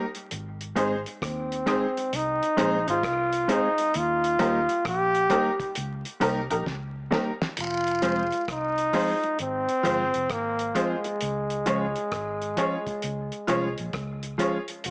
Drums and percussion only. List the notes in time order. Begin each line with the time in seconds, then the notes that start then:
0.15 closed hi-hat
0.31 closed hi-hat
0.61 closed hi-hat
0.76 closed hi-hat, cowbell
1.06 closed hi-hat
1.22 kick, cross-stick, closed hi-hat
1.52 closed hi-hat
1.67 cross-stick, closed hi-hat, cowbell
1.97 closed hi-hat
2.13 closed hi-hat
2.43 closed hi-hat
2.58 closed hi-hat, cowbell
2.88 closed hi-hat
3.03 kick, cross-stick, closed hi-hat
3.32 closed hi-hat
3.49 closed hi-hat, cowbell
3.78 closed hi-hat
3.94 closed hi-hat
4.24 closed hi-hat
4.39 closed hi-hat, cowbell
4.69 closed hi-hat
4.85 kick, cross-stick, closed hi-hat
5.15 closed hi-hat
5.30 closed hi-hat, cowbell
5.60 kick, closed hi-hat
5.75 closed hi-hat
6.05 closed hi-hat
6.21 closed hi-hat, cowbell
6.50 closed hi-hat
6.66 kick, snare
7.12 snare, cowbell
7.42 snare
7.57 closed hi-hat, vibraslap
7.87 closed hi-hat
8.02 closed hi-hat, cowbell
8.32 closed hi-hat
8.48 kick, cross-stick, closed hi-hat
8.78 closed hi-hat
8.93 open hi-hat, cowbell
9.23 closed hi-hat
9.39 closed hi-hat
9.69 closed hi-hat
9.85 closed hi-hat, cowbell
10.14 closed hi-hat
10.29 kick, cross-stick, closed hi-hat
10.59 closed hi-hat
10.75 closed hi-hat, cowbell
11.04 closed hi-hat
11.21 closed hi-hat
11.50 closed hi-hat
11.66 closed hi-hat, cowbell
11.96 closed hi-hat
12.12 kick, cross-stick, closed hi-hat
12.41 closed hi-hat
12.57 closed hi-hat, cowbell
12.87 kick, closed hi-hat
13.02 closed hi-hat
13.32 closed hi-hat
13.48 closed hi-hat, cowbell
13.78 closed hi-hat
13.93 kick, cross-stick, closed hi-hat
14.23 closed hi-hat
14.39 closed hi-hat, cowbell
14.68 closed hi-hat
14.84 closed hi-hat